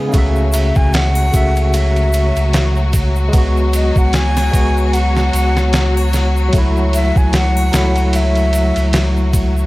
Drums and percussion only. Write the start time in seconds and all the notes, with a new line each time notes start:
0.13 kick, ride, shaker
0.36 shaker
0.53 ride, shaker
0.75 kick, shaker
0.93 snare, ride, shaker
1.15 triangle, shaker
1.33 kick, ride, shaker
1.56 ride, shaker
1.73 ride, shaker
1.96 ride, shaker
2.13 ride, shaker
2.36 ride, shaker
2.53 snare, ride, shaker
2.76 shaker
2.93 kick, ride, shaker
3.16 shaker
3.33 kick, ride, shaker
3.57 shaker
3.73 ride, shaker
3.96 kick, shaker
4.13 snare, ride, shaker
4.37 snare, triangle, shaker
4.53 kick, ride, shaker
4.77 shaker
4.93 ride, shaker
5.16 snare, shaker
5.33 ride, shaker
5.57 snare, shaker
5.73 snare, ride, shaker
5.97 triangle, shaker
6.13 snare, ride, shaker
6.37 shaker
6.53 kick, ride, shaker
6.77 shaker
6.93 ride, shaker
7.16 kick, shaker
7.33 snare, ride, shaker
7.56 triangle, shaker
7.73 snare, ride, shaker
7.96 ride, shaker
8.13 ride, shaker
8.36 ride, shaker
8.53 ride, shaker
8.76 ride, shaker
8.93 snare, ride, shaker
9.17 shaker
9.33 kick, ride, shaker
9.57 shaker